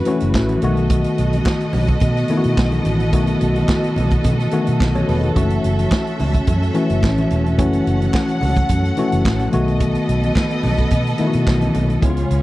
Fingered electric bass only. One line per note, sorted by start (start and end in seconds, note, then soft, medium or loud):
0.22 0.32 F#1 medium
0.35 0.56 A1 medium
0.63 1.04 B1 loud
1.19 1.39 B1 medium
1.74 1.95 B1 medium
2.02 2.23 B2 loud
2.45 2.55 B2 medium
2.58 2.78 B1 medium
2.86 3.13 A1 loud
3.13 3.34 B1 medium
3.42 3.62 B1 loud
3.97 4.18 B1 medium
4.25 4.46 B2 loud
4.68 4.78 B2 medium
4.81 5.02 B1 medium
5.09 5.30 E1 loud
5.36 5.57 F#1 loud
5.65 5.85 F#1 medium
6.20 6.41 C#2 medium
6.48 6.68 F#2 loud
6.90 7.00 F#1 medium
7.03 7.24 A1 medium
7.31 7.59 E1 loud
7.59 7.80 F#1 medium
7.87 8.08 F#1 medium
8.43 8.63 C#2 medium
8.70 8.91 F#2 loud
9.13 9.22 F#1 medium
9.25 9.46 A1 loud
9.54 9.95 B1 loud
10.09 10.30 B1 medium
10.64 10.85 B1 medium
10.92 11.13 B2 loud
11.35 11.44 B2 medium
11.47 11.68 B1 medium
11.75 11.96 B1 medium
12.03 12.24 C#2 medium
12.31 12.43 C#2 loud